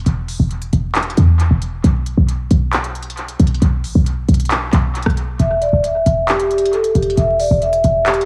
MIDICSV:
0, 0, Header, 1, 4, 480
1, 0, Start_track
1, 0, Tempo, 444444
1, 67, Time_signature, 4, 2, 24, 8
1, 8912, End_track
2, 0, Start_track
2, 0, Title_t, "Vibraphone"
2, 0, Program_c, 0, 11
2, 5829, Note_on_c, 0, 76, 80
2, 6027, Note_off_c, 0, 76, 0
2, 6065, Note_on_c, 0, 74, 84
2, 6264, Note_off_c, 0, 74, 0
2, 6313, Note_on_c, 0, 76, 81
2, 6761, Note_off_c, 0, 76, 0
2, 6789, Note_on_c, 0, 67, 87
2, 6987, Note_off_c, 0, 67, 0
2, 7030, Note_on_c, 0, 67, 84
2, 7227, Note_off_c, 0, 67, 0
2, 7269, Note_on_c, 0, 69, 86
2, 7466, Note_off_c, 0, 69, 0
2, 7505, Note_on_c, 0, 67, 84
2, 7704, Note_off_c, 0, 67, 0
2, 7747, Note_on_c, 0, 76, 86
2, 7946, Note_off_c, 0, 76, 0
2, 7987, Note_on_c, 0, 74, 85
2, 8186, Note_off_c, 0, 74, 0
2, 8233, Note_on_c, 0, 76, 89
2, 8681, Note_off_c, 0, 76, 0
2, 8707, Note_on_c, 0, 67, 93
2, 8905, Note_off_c, 0, 67, 0
2, 8912, End_track
3, 0, Start_track
3, 0, Title_t, "808-style bass"
3, 0, Program_c, 1, 38
3, 67, Note_on_c, 1, 28, 111
3, 413, Note_off_c, 1, 28, 0
3, 427, Note_on_c, 1, 28, 105
3, 773, Note_off_c, 1, 28, 0
3, 787, Note_on_c, 1, 28, 108
3, 1248, Note_off_c, 1, 28, 0
3, 1268, Note_on_c, 1, 40, 104
3, 1613, Note_off_c, 1, 40, 0
3, 1627, Note_on_c, 1, 28, 103
3, 1973, Note_off_c, 1, 28, 0
3, 1987, Note_on_c, 1, 35, 112
3, 2333, Note_off_c, 1, 35, 0
3, 2348, Note_on_c, 1, 35, 102
3, 2693, Note_off_c, 1, 35, 0
3, 2707, Note_on_c, 1, 35, 104
3, 3629, Note_off_c, 1, 35, 0
3, 3667, Note_on_c, 1, 35, 105
3, 3898, Note_off_c, 1, 35, 0
3, 3907, Note_on_c, 1, 35, 106
3, 4147, Note_on_c, 1, 33, 98
3, 4164, Note_off_c, 1, 35, 0
3, 4261, Note_off_c, 1, 33, 0
3, 4268, Note_on_c, 1, 35, 104
3, 4613, Note_off_c, 1, 35, 0
3, 4627, Note_on_c, 1, 35, 104
3, 5088, Note_off_c, 1, 35, 0
3, 5107, Note_on_c, 1, 35, 105
3, 5453, Note_off_c, 1, 35, 0
3, 5466, Note_on_c, 1, 35, 100
3, 5812, Note_off_c, 1, 35, 0
3, 5827, Note_on_c, 1, 28, 117
3, 6173, Note_off_c, 1, 28, 0
3, 6187, Note_on_c, 1, 26, 106
3, 6533, Note_off_c, 1, 26, 0
3, 6546, Note_on_c, 1, 28, 108
3, 7468, Note_off_c, 1, 28, 0
3, 7507, Note_on_c, 1, 28, 103
3, 7738, Note_off_c, 1, 28, 0
3, 7747, Note_on_c, 1, 28, 113
3, 8093, Note_off_c, 1, 28, 0
3, 8108, Note_on_c, 1, 28, 105
3, 8453, Note_off_c, 1, 28, 0
3, 8469, Note_on_c, 1, 28, 110
3, 8912, Note_off_c, 1, 28, 0
3, 8912, End_track
4, 0, Start_track
4, 0, Title_t, "Drums"
4, 67, Note_on_c, 9, 42, 79
4, 175, Note_off_c, 9, 42, 0
4, 307, Note_on_c, 9, 46, 69
4, 415, Note_off_c, 9, 46, 0
4, 547, Note_on_c, 9, 42, 48
4, 655, Note_off_c, 9, 42, 0
4, 666, Note_on_c, 9, 42, 75
4, 774, Note_off_c, 9, 42, 0
4, 786, Note_on_c, 9, 42, 76
4, 894, Note_off_c, 9, 42, 0
4, 1026, Note_on_c, 9, 39, 115
4, 1026, Note_on_c, 9, 42, 59
4, 1107, Note_off_c, 9, 42, 0
4, 1107, Note_on_c, 9, 42, 60
4, 1134, Note_off_c, 9, 39, 0
4, 1187, Note_off_c, 9, 42, 0
4, 1187, Note_on_c, 9, 42, 61
4, 1266, Note_off_c, 9, 42, 0
4, 1266, Note_on_c, 9, 42, 83
4, 1374, Note_off_c, 9, 42, 0
4, 1509, Note_on_c, 9, 42, 71
4, 1617, Note_off_c, 9, 42, 0
4, 1747, Note_on_c, 9, 42, 74
4, 1855, Note_off_c, 9, 42, 0
4, 1988, Note_on_c, 9, 42, 78
4, 2096, Note_off_c, 9, 42, 0
4, 2228, Note_on_c, 9, 42, 66
4, 2336, Note_off_c, 9, 42, 0
4, 2468, Note_on_c, 9, 42, 84
4, 2576, Note_off_c, 9, 42, 0
4, 2707, Note_on_c, 9, 42, 81
4, 2815, Note_off_c, 9, 42, 0
4, 2947, Note_on_c, 9, 39, 118
4, 2947, Note_on_c, 9, 42, 45
4, 3055, Note_off_c, 9, 39, 0
4, 3055, Note_off_c, 9, 42, 0
4, 3068, Note_on_c, 9, 42, 75
4, 3176, Note_off_c, 9, 42, 0
4, 3188, Note_on_c, 9, 42, 48
4, 3267, Note_off_c, 9, 42, 0
4, 3267, Note_on_c, 9, 42, 62
4, 3347, Note_off_c, 9, 42, 0
4, 3347, Note_on_c, 9, 42, 82
4, 3427, Note_off_c, 9, 42, 0
4, 3427, Note_on_c, 9, 42, 44
4, 3535, Note_off_c, 9, 42, 0
4, 3547, Note_on_c, 9, 42, 69
4, 3655, Note_off_c, 9, 42, 0
4, 3667, Note_on_c, 9, 42, 79
4, 3748, Note_off_c, 9, 42, 0
4, 3748, Note_on_c, 9, 42, 61
4, 3828, Note_off_c, 9, 42, 0
4, 3828, Note_on_c, 9, 42, 47
4, 3908, Note_off_c, 9, 42, 0
4, 3908, Note_on_c, 9, 42, 82
4, 4016, Note_off_c, 9, 42, 0
4, 4148, Note_on_c, 9, 46, 70
4, 4256, Note_off_c, 9, 46, 0
4, 4388, Note_on_c, 9, 42, 79
4, 4496, Note_off_c, 9, 42, 0
4, 4628, Note_on_c, 9, 42, 64
4, 4688, Note_off_c, 9, 42, 0
4, 4688, Note_on_c, 9, 42, 65
4, 4749, Note_off_c, 9, 42, 0
4, 4749, Note_on_c, 9, 42, 66
4, 4808, Note_off_c, 9, 42, 0
4, 4808, Note_on_c, 9, 42, 63
4, 4868, Note_off_c, 9, 42, 0
4, 4868, Note_on_c, 9, 39, 114
4, 4868, Note_on_c, 9, 42, 69
4, 4976, Note_off_c, 9, 39, 0
4, 4976, Note_off_c, 9, 42, 0
4, 5106, Note_on_c, 9, 42, 81
4, 5107, Note_on_c, 9, 39, 69
4, 5214, Note_off_c, 9, 42, 0
4, 5215, Note_off_c, 9, 39, 0
4, 5347, Note_on_c, 9, 42, 59
4, 5427, Note_off_c, 9, 42, 0
4, 5427, Note_on_c, 9, 42, 58
4, 5467, Note_on_c, 9, 37, 100
4, 5507, Note_off_c, 9, 42, 0
4, 5507, Note_on_c, 9, 42, 57
4, 5575, Note_off_c, 9, 37, 0
4, 5585, Note_off_c, 9, 42, 0
4, 5585, Note_on_c, 9, 42, 75
4, 5693, Note_off_c, 9, 42, 0
4, 5826, Note_on_c, 9, 42, 81
4, 5934, Note_off_c, 9, 42, 0
4, 6066, Note_on_c, 9, 42, 66
4, 6174, Note_off_c, 9, 42, 0
4, 6307, Note_on_c, 9, 42, 86
4, 6415, Note_off_c, 9, 42, 0
4, 6546, Note_on_c, 9, 42, 85
4, 6654, Note_off_c, 9, 42, 0
4, 6787, Note_on_c, 9, 39, 117
4, 6787, Note_on_c, 9, 42, 46
4, 6895, Note_off_c, 9, 39, 0
4, 6895, Note_off_c, 9, 42, 0
4, 6907, Note_on_c, 9, 42, 77
4, 7015, Note_off_c, 9, 42, 0
4, 7027, Note_on_c, 9, 42, 49
4, 7107, Note_off_c, 9, 42, 0
4, 7107, Note_on_c, 9, 42, 66
4, 7188, Note_off_c, 9, 42, 0
4, 7188, Note_on_c, 9, 42, 85
4, 7268, Note_off_c, 9, 42, 0
4, 7268, Note_on_c, 9, 42, 43
4, 7376, Note_off_c, 9, 42, 0
4, 7387, Note_on_c, 9, 42, 72
4, 7495, Note_off_c, 9, 42, 0
4, 7507, Note_on_c, 9, 42, 79
4, 7587, Note_off_c, 9, 42, 0
4, 7587, Note_on_c, 9, 42, 61
4, 7667, Note_off_c, 9, 42, 0
4, 7667, Note_on_c, 9, 42, 47
4, 7748, Note_off_c, 9, 42, 0
4, 7748, Note_on_c, 9, 42, 80
4, 7856, Note_off_c, 9, 42, 0
4, 7987, Note_on_c, 9, 46, 73
4, 8095, Note_off_c, 9, 46, 0
4, 8228, Note_on_c, 9, 42, 48
4, 8336, Note_off_c, 9, 42, 0
4, 8347, Note_on_c, 9, 42, 77
4, 8455, Note_off_c, 9, 42, 0
4, 8467, Note_on_c, 9, 42, 80
4, 8575, Note_off_c, 9, 42, 0
4, 8707, Note_on_c, 9, 39, 123
4, 8707, Note_on_c, 9, 42, 61
4, 8787, Note_off_c, 9, 42, 0
4, 8787, Note_on_c, 9, 42, 61
4, 8815, Note_off_c, 9, 39, 0
4, 8868, Note_off_c, 9, 42, 0
4, 8868, Note_on_c, 9, 42, 64
4, 8912, Note_off_c, 9, 42, 0
4, 8912, End_track
0, 0, End_of_file